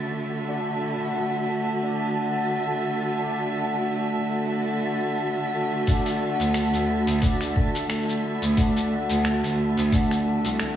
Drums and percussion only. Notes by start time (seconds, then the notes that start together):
5.87 kick, open hi-hat, shaker
6.06 open hi-hat, shaker
6.40 open hi-hat, shaker
6.54 finger snap, open hi-hat, shaker
6.74 open hi-hat, shaker
7.07 open hi-hat, shaker
7.22 kick, open hi-hat, shaker
7.41 finger snap, open hi-hat, shaker
7.56 kick
7.75 open hi-hat, shaker
7.90 finger snap, open hi-hat, shaker
8.09 shaker
8.42 open hi-hat, shaker
8.57 kick, open hi-hat, shaker
8.76 open hi-hat, shaker
9.10 open hi-hat, shaker
9.25 finger snap, open hi-hat, shaker
9.44 open hi-hat, shaker
9.77 open hi-hat, shaker
9.92 kick, open hi-hat, shaker
10.11 finger snap, open hi-hat, shaker
10.45 open hi-hat, shaker
10.59 finger snap, open hi-hat, shaker